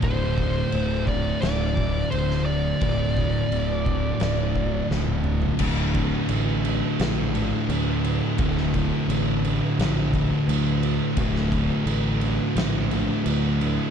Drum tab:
CC |x---x---x---x---|x---x---x-------|x-x-x-x-x-x-x-x-|x-x-x-x-x-x-x-x-|
SD |--------o----o--|--------o---o---|--------o-------|-o------o-------|
T1 |----------------|-------------o--|----------------|----------------|
T2 |----------------|--------------o-|----------------|----------------|
FT |----------------|---------------o|----------------|----------------|
BD |o-o---o---o-----|o-o---o---o-----|o-o-------------|o-o-------o-----|

CC |x-x-x-x-x-x-x-x-|
SD |-o------o-------|
T1 |----------------|
T2 |----------------|
FT |----------------|
BD |o-o-------------|